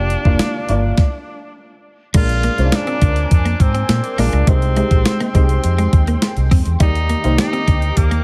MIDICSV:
0, 0, Header, 1, 8, 480
1, 0, Start_track
1, 0, Tempo, 582524
1, 1769, Time_signature, 4, 2, 24, 8
1, 6788, End_track
2, 0, Start_track
2, 0, Title_t, "Analog synth pad"
2, 0, Program_c, 0, 89
2, 1772, Note_on_c, 0, 86, 84
2, 1773, Note_on_c, 0, 70, 79
2, 1773, Note_on_c, 0, 80, 72
2, 3672, Note_off_c, 0, 70, 0
2, 3672, Note_off_c, 0, 80, 0
2, 3672, Note_off_c, 0, 86, 0
2, 3679, Note_on_c, 0, 84, 82
2, 3683, Note_on_c, 0, 79, 71
2, 3686, Note_on_c, 0, 56, 76
2, 5585, Note_off_c, 0, 84, 0
2, 5587, Note_off_c, 0, 79, 0
2, 5588, Note_off_c, 0, 56, 0
2, 5611, Note_on_c, 0, 67, 77
2, 5613, Note_on_c, 0, 86, 85
2, 5615, Note_on_c, 0, 63, 74
2, 6788, Note_off_c, 0, 63, 0
2, 6788, Note_off_c, 0, 67, 0
2, 6788, Note_off_c, 0, 86, 0
2, 6788, End_track
3, 0, Start_track
3, 0, Title_t, "Grand piano"
3, 0, Program_c, 1, 0
3, 0, Control_c, 1, 64, 127
3, 0, Note_on_c, 1, 58, 67
3, 0, Note_on_c, 1, 62, 58
3, 0, Note_on_c, 1, 65, 57
3, 0, Note_on_c, 1, 67, 71
3, 0, Note_on_c, 1, 74, 70
3, 113, Note_off_c, 1, 58, 0
3, 114, Note_off_c, 1, 62, 0
3, 116, Note_off_c, 1, 65, 0
3, 117, Note_off_c, 1, 67, 0
3, 207, Note_on_c, 1, 58, 76
3, 213, Note_on_c, 1, 62, 69
3, 214, Note_on_c, 1, 65, 72
3, 218, Note_on_c, 1, 77, 81
3, 472, Note_off_c, 1, 58, 0
3, 475, Note_off_c, 1, 62, 0
3, 476, Note_off_c, 1, 65, 0
3, 478, Note_off_c, 1, 77, 0
3, 568, Note_on_c, 1, 58, 75
3, 571, Note_on_c, 1, 62, 69
3, 574, Note_on_c, 1, 65, 75
3, 577, Note_off_c, 1, 74, 0
3, 577, Note_on_c, 1, 74, 89
3, 809, Note_off_c, 1, 58, 0
3, 810, Note_off_c, 1, 62, 0
3, 811, Note_off_c, 1, 65, 0
3, 813, Note_off_c, 1, 74, 0
3, 821, Control_c, 1, 64, 0
3, 1767, Note_on_c, 1, 56, 66
3, 1768, Note_on_c, 1, 62, 61
3, 1771, Note_on_c, 1, 46, 58
3, 1774, Note_on_c, 1, 65, 60
3, 1777, Note_on_c, 1, 70, 76
3, 1938, Control_c, 1, 64, 127
3, 2032, Note_off_c, 1, 56, 0
3, 2032, Note_off_c, 1, 62, 0
3, 2035, Note_off_c, 1, 65, 0
3, 2037, Note_off_c, 1, 70, 0
3, 2123, Note_on_c, 1, 56, 69
3, 2126, Note_on_c, 1, 61, 48
3, 2130, Note_on_c, 1, 65, 59
3, 2134, Note_on_c, 1, 72, 75
3, 2181, Note_off_c, 1, 61, 0
3, 2182, Note_on_c, 1, 62, 64
3, 2457, Note_off_c, 1, 46, 0
3, 2830, Note_off_c, 1, 56, 0
3, 2833, Note_off_c, 1, 65, 0
3, 2835, Note_off_c, 1, 72, 0
3, 2859, Note_off_c, 1, 62, 0
3, 3444, Note_on_c, 1, 56, 71
3, 3448, Note_on_c, 1, 62, 61
3, 3452, Note_on_c, 1, 65, 64
3, 3455, Note_on_c, 1, 70, 73
3, 3623, Note_off_c, 1, 56, 0
3, 3625, Note_off_c, 1, 62, 0
3, 3627, Note_off_c, 1, 65, 0
3, 3628, Note_off_c, 1, 70, 0
3, 3686, Note_on_c, 1, 56, 70
3, 3692, Note_on_c, 1, 48, 59
3, 3692, Note_on_c, 1, 63, 65
3, 3693, Note_on_c, 1, 67, 64
3, 3696, Note_on_c, 1, 72, 77
3, 3698, Control_c, 1, 64, 0
3, 3863, Note_off_c, 1, 56, 0
3, 3864, Control_c, 1, 64, 127
3, 3866, Note_off_c, 1, 63, 0
3, 3867, Note_off_c, 1, 67, 0
3, 3869, Note_off_c, 1, 72, 0
3, 3924, Note_on_c, 1, 56, 69
3, 3929, Note_on_c, 1, 63, 63
3, 3932, Note_on_c, 1, 67, 66
3, 3935, Note_on_c, 1, 72, 75
3, 4279, Note_off_c, 1, 56, 0
3, 4281, Note_off_c, 1, 63, 0
3, 4282, Note_off_c, 1, 67, 0
3, 4284, Note_off_c, 1, 72, 0
3, 4378, Note_off_c, 1, 48, 0
3, 4404, Note_on_c, 1, 56, 69
3, 4406, Note_on_c, 1, 63, 65
3, 4409, Note_on_c, 1, 67, 66
3, 4412, Note_on_c, 1, 72, 77
3, 5110, Note_off_c, 1, 56, 0
3, 5111, Note_off_c, 1, 63, 0
3, 5112, Note_off_c, 1, 67, 0
3, 5114, Note_off_c, 1, 72, 0
3, 5603, Note_on_c, 1, 58, 73
3, 5606, Note_on_c, 1, 63, 67
3, 5607, Note_on_c, 1, 51, 59
3, 5610, Note_on_c, 1, 67, 67
3, 5613, Note_on_c, 1, 74, 78
3, 5620, Control_c, 1, 64, 0
3, 5757, Control_c, 1, 64, 127
3, 5870, Note_off_c, 1, 58, 0
3, 5871, Note_off_c, 1, 63, 0
3, 5873, Note_off_c, 1, 67, 0
3, 5875, Note_off_c, 1, 74, 0
3, 5965, Note_on_c, 1, 58, 71
3, 5968, Note_on_c, 1, 63, 62
3, 5971, Note_on_c, 1, 67, 66
3, 5975, Note_on_c, 1, 72, 75
3, 6295, Note_off_c, 1, 51, 0
3, 6671, Note_off_c, 1, 58, 0
3, 6672, Note_off_c, 1, 63, 0
3, 6674, Note_off_c, 1, 67, 0
3, 6676, Note_off_c, 1, 72, 0
3, 6788, End_track
4, 0, Start_track
4, 0, Title_t, "Tenor saxophone"
4, 0, Program_c, 2, 66
4, 0, Note_on_c, 2, 62, 100
4, 1296, Note_off_c, 2, 62, 0
4, 1793, Note_on_c, 2, 65, 109
4, 2269, Note_on_c, 2, 62, 94
4, 2282, Note_off_c, 2, 65, 0
4, 2739, Note_off_c, 2, 62, 0
4, 2748, Note_on_c, 2, 62, 90
4, 2981, Note_on_c, 2, 60, 91
4, 2993, Note_off_c, 2, 62, 0
4, 3456, Note_on_c, 2, 62, 86
4, 3469, Note_off_c, 2, 60, 0
4, 3700, Note_on_c, 2, 60, 97
4, 3712, Note_off_c, 2, 62, 0
4, 4413, Note_off_c, 2, 60, 0
4, 4418, Note_on_c, 2, 60, 77
4, 5340, Note_off_c, 2, 60, 0
4, 5624, Note_on_c, 2, 63, 110
4, 6064, Note_off_c, 2, 63, 0
4, 6099, Note_on_c, 2, 63, 107
4, 6572, Note_on_c, 2, 58, 90
4, 6584, Note_off_c, 2, 63, 0
4, 6788, Note_off_c, 2, 58, 0
4, 6788, End_track
5, 0, Start_track
5, 0, Title_t, "Clean electric guitar"
5, 0, Program_c, 3, 27
5, 1767, Note_on_c, 3, 56, 74
5, 1837, Note_off_c, 3, 56, 0
5, 2009, Note_on_c, 3, 58, 72
5, 2079, Note_off_c, 3, 58, 0
5, 2367, Note_on_c, 3, 60, 67
5, 2438, Note_off_c, 3, 60, 0
5, 2488, Note_on_c, 3, 62, 68
5, 2558, Note_off_c, 3, 62, 0
5, 2845, Note_on_c, 3, 58, 67
5, 2916, Note_off_c, 3, 58, 0
5, 3085, Note_on_c, 3, 60, 69
5, 3156, Note_off_c, 3, 60, 0
5, 3446, Note_on_c, 3, 58, 69
5, 3516, Note_off_c, 3, 58, 0
5, 3569, Note_on_c, 3, 56, 70
5, 3639, Note_off_c, 3, 56, 0
5, 3688, Note_on_c, 3, 55, 73
5, 3758, Note_off_c, 3, 55, 0
5, 3928, Note_on_c, 3, 56, 68
5, 3998, Note_off_c, 3, 56, 0
5, 4289, Note_on_c, 3, 58, 79
5, 4359, Note_off_c, 3, 58, 0
5, 4411, Note_on_c, 3, 60, 66
5, 4480, Note_off_c, 3, 60, 0
5, 4766, Note_on_c, 3, 56, 74
5, 4837, Note_off_c, 3, 56, 0
5, 5008, Note_on_c, 3, 58, 65
5, 5078, Note_off_c, 3, 58, 0
5, 5367, Note_on_c, 3, 60, 70
5, 5437, Note_off_c, 3, 60, 0
5, 5607, Note_on_c, 3, 55, 76
5, 5677, Note_off_c, 3, 55, 0
5, 5847, Note_on_c, 3, 58, 74
5, 5918, Note_off_c, 3, 58, 0
5, 6204, Note_on_c, 3, 60, 69
5, 6275, Note_off_c, 3, 60, 0
5, 6323, Note_on_c, 3, 62, 74
5, 6395, Note_off_c, 3, 62, 0
5, 6684, Note_on_c, 3, 58, 69
5, 6755, Note_off_c, 3, 58, 0
5, 6788, End_track
6, 0, Start_track
6, 0, Title_t, "Fingered electric bass"
6, 0, Program_c, 4, 33
6, 0, Note_on_c, 4, 29, 93
6, 118, Note_off_c, 4, 29, 0
6, 207, Note_on_c, 4, 29, 83
6, 298, Note_off_c, 4, 29, 0
6, 569, Note_on_c, 4, 31, 75
6, 749, Note_off_c, 4, 31, 0
6, 1768, Note_on_c, 4, 34, 104
6, 2038, Note_off_c, 4, 34, 0
6, 2128, Note_on_c, 4, 36, 84
6, 2218, Note_off_c, 4, 36, 0
6, 2485, Note_on_c, 4, 38, 83
6, 2667, Note_off_c, 4, 38, 0
6, 2730, Note_on_c, 4, 41, 82
6, 2910, Note_off_c, 4, 41, 0
6, 2967, Note_on_c, 4, 44, 86
6, 3148, Note_off_c, 4, 44, 0
6, 3205, Note_on_c, 4, 46, 96
6, 3296, Note_off_c, 4, 46, 0
6, 3446, Note_on_c, 4, 34, 80
6, 3537, Note_off_c, 4, 34, 0
6, 3568, Note_on_c, 4, 37, 85
6, 3658, Note_off_c, 4, 37, 0
6, 3685, Note_on_c, 4, 36, 101
6, 3956, Note_off_c, 4, 36, 0
6, 4046, Note_on_c, 4, 34, 80
6, 4137, Note_off_c, 4, 34, 0
6, 4406, Note_on_c, 4, 36, 84
6, 4587, Note_off_c, 4, 36, 0
6, 4649, Note_on_c, 4, 41, 88
6, 4829, Note_off_c, 4, 41, 0
6, 4885, Note_on_c, 4, 39, 82
6, 5066, Note_off_c, 4, 39, 0
6, 5249, Note_on_c, 4, 36, 88
6, 5339, Note_off_c, 4, 36, 0
6, 5367, Note_on_c, 4, 41, 78
6, 5458, Note_off_c, 4, 41, 0
6, 5489, Note_on_c, 4, 40, 85
6, 5579, Note_off_c, 4, 40, 0
6, 5605, Note_on_c, 4, 39, 101
6, 5877, Note_off_c, 4, 39, 0
6, 5970, Note_on_c, 4, 36, 78
6, 6060, Note_off_c, 4, 36, 0
6, 6326, Note_on_c, 4, 38, 85
6, 6507, Note_off_c, 4, 38, 0
6, 6569, Note_on_c, 4, 39, 89
6, 6749, Note_off_c, 4, 39, 0
6, 6788, End_track
7, 0, Start_track
7, 0, Title_t, "Muted clean electric guitar strokes"
7, 2126, Note_on_c, 9, 29, 39
7, 2208, Note_off_c, 9, 29, 0
7, 2247, Note_on_c, 9, 29, 43
7, 2330, Note_off_c, 9, 29, 0
7, 2965, Note_on_c, 9, 29, 41
7, 3047, Note_off_c, 9, 29, 0
7, 3206, Note_on_c, 9, 29, 44
7, 3289, Note_off_c, 9, 29, 0
7, 4048, Note_on_c, 9, 29, 43
7, 4131, Note_off_c, 9, 29, 0
7, 4167, Note_on_c, 9, 29, 41
7, 4249, Note_off_c, 9, 29, 0
7, 4885, Note_on_c, 9, 29, 42
7, 4967, Note_off_c, 9, 29, 0
7, 5967, Note_on_c, 9, 29, 43
7, 6050, Note_off_c, 9, 29, 0
7, 6089, Note_on_c, 9, 29, 40
7, 6171, Note_off_c, 9, 29, 0
7, 6788, End_track
8, 0, Start_track
8, 0, Title_t, "Drums"
8, 83, Note_on_c, 9, 42, 67
8, 166, Note_off_c, 9, 42, 0
8, 207, Note_on_c, 9, 36, 77
8, 290, Note_off_c, 9, 36, 0
8, 324, Note_on_c, 9, 38, 104
8, 325, Note_on_c, 9, 42, 81
8, 406, Note_off_c, 9, 38, 0
8, 408, Note_off_c, 9, 42, 0
8, 565, Note_on_c, 9, 42, 61
8, 647, Note_off_c, 9, 42, 0
8, 804, Note_on_c, 9, 38, 79
8, 807, Note_on_c, 9, 36, 98
8, 886, Note_off_c, 9, 38, 0
8, 889, Note_off_c, 9, 36, 0
8, 1763, Note_on_c, 9, 42, 93
8, 1764, Note_on_c, 9, 49, 87
8, 1766, Note_on_c, 9, 36, 109
8, 1846, Note_off_c, 9, 42, 0
8, 1846, Note_off_c, 9, 49, 0
8, 1849, Note_off_c, 9, 36, 0
8, 1889, Note_on_c, 9, 42, 52
8, 1972, Note_off_c, 9, 42, 0
8, 2005, Note_on_c, 9, 42, 68
8, 2088, Note_off_c, 9, 42, 0
8, 2128, Note_on_c, 9, 42, 48
8, 2211, Note_off_c, 9, 42, 0
8, 2244, Note_on_c, 9, 38, 112
8, 2245, Note_on_c, 9, 42, 87
8, 2326, Note_off_c, 9, 38, 0
8, 2327, Note_off_c, 9, 42, 0
8, 2365, Note_on_c, 9, 42, 43
8, 2448, Note_off_c, 9, 42, 0
8, 2484, Note_on_c, 9, 42, 68
8, 2485, Note_on_c, 9, 36, 78
8, 2567, Note_off_c, 9, 42, 0
8, 2568, Note_off_c, 9, 36, 0
8, 2604, Note_on_c, 9, 42, 45
8, 2686, Note_off_c, 9, 42, 0
8, 2728, Note_on_c, 9, 42, 84
8, 2729, Note_on_c, 9, 36, 78
8, 2810, Note_off_c, 9, 42, 0
8, 2812, Note_off_c, 9, 36, 0
8, 2847, Note_on_c, 9, 42, 51
8, 2930, Note_off_c, 9, 42, 0
8, 2966, Note_on_c, 9, 36, 80
8, 2967, Note_on_c, 9, 42, 66
8, 3048, Note_off_c, 9, 36, 0
8, 3050, Note_off_c, 9, 42, 0
8, 3087, Note_on_c, 9, 42, 53
8, 3169, Note_off_c, 9, 42, 0
8, 3206, Note_on_c, 9, 38, 102
8, 3206, Note_on_c, 9, 42, 80
8, 3288, Note_off_c, 9, 38, 0
8, 3288, Note_off_c, 9, 42, 0
8, 3327, Note_on_c, 9, 42, 44
8, 3409, Note_off_c, 9, 42, 0
8, 3447, Note_on_c, 9, 46, 74
8, 3529, Note_off_c, 9, 46, 0
8, 3565, Note_on_c, 9, 42, 46
8, 3647, Note_off_c, 9, 42, 0
8, 3686, Note_on_c, 9, 36, 113
8, 3686, Note_on_c, 9, 42, 96
8, 3768, Note_off_c, 9, 36, 0
8, 3768, Note_off_c, 9, 42, 0
8, 3808, Note_on_c, 9, 42, 48
8, 3891, Note_off_c, 9, 42, 0
8, 3926, Note_on_c, 9, 42, 69
8, 4008, Note_off_c, 9, 42, 0
8, 4045, Note_on_c, 9, 36, 78
8, 4045, Note_on_c, 9, 42, 51
8, 4127, Note_off_c, 9, 42, 0
8, 4128, Note_off_c, 9, 36, 0
8, 4166, Note_on_c, 9, 38, 112
8, 4167, Note_on_c, 9, 42, 90
8, 4248, Note_off_c, 9, 38, 0
8, 4249, Note_off_c, 9, 42, 0
8, 4289, Note_on_c, 9, 42, 44
8, 4371, Note_off_c, 9, 42, 0
8, 4406, Note_on_c, 9, 36, 79
8, 4408, Note_on_c, 9, 42, 67
8, 4488, Note_off_c, 9, 36, 0
8, 4490, Note_off_c, 9, 42, 0
8, 4524, Note_on_c, 9, 42, 45
8, 4607, Note_off_c, 9, 42, 0
8, 4644, Note_on_c, 9, 42, 87
8, 4727, Note_off_c, 9, 42, 0
8, 4767, Note_on_c, 9, 42, 53
8, 4849, Note_off_c, 9, 42, 0
8, 4885, Note_on_c, 9, 42, 65
8, 4886, Note_on_c, 9, 36, 88
8, 4968, Note_off_c, 9, 36, 0
8, 4968, Note_off_c, 9, 42, 0
8, 5005, Note_on_c, 9, 42, 52
8, 5087, Note_off_c, 9, 42, 0
8, 5125, Note_on_c, 9, 38, 102
8, 5125, Note_on_c, 9, 42, 89
8, 5208, Note_off_c, 9, 38, 0
8, 5208, Note_off_c, 9, 42, 0
8, 5246, Note_on_c, 9, 42, 47
8, 5328, Note_off_c, 9, 42, 0
8, 5367, Note_on_c, 9, 36, 85
8, 5369, Note_on_c, 9, 46, 77
8, 5450, Note_off_c, 9, 36, 0
8, 5451, Note_off_c, 9, 46, 0
8, 5484, Note_on_c, 9, 42, 48
8, 5566, Note_off_c, 9, 42, 0
8, 5604, Note_on_c, 9, 42, 96
8, 5606, Note_on_c, 9, 36, 114
8, 5686, Note_off_c, 9, 42, 0
8, 5688, Note_off_c, 9, 36, 0
8, 5730, Note_on_c, 9, 42, 53
8, 5813, Note_off_c, 9, 42, 0
8, 5846, Note_on_c, 9, 42, 75
8, 5928, Note_off_c, 9, 42, 0
8, 5965, Note_on_c, 9, 42, 49
8, 6048, Note_off_c, 9, 42, 0
8, 6085, Note_on_c, 9, 38, 114
8, 6086, Note_on_c, 9, 42, 85
8, 6167, Note_off_c, 9, 38, 0
8, 6168, Note_off_c, 9, 42, 0
8, 6208, Note_on_c, 9, 42, 44
8, 6290, Note_off_c, 9, 42, 0
8, 6325, Note_on_c, 9, 42, 68
8, 6326, Note_on_c, 9, 36, 82
8, 6408, Note_off_c, 9, 36, 0
8, 6408, Note_off_c, 9, 42, 0
8, 6445, Note_on_c, 9, 42, 47
8, 6527, Note_off_c, 9, 42, 0
8, 6565, Note_on_c, 9, 42, 93
8, 6568, Note_on_c, 9, 36, 77
8, 6648, Note_off_c, 9, 42, 0
8, 6650, Note_off_c, 9, 36, 0
8, 6686, Note_on_c, 9, 42, 52
8, 6769, Note_off_c, 9, 42, 0
8, 6788, End_track
0, 0, End_of_file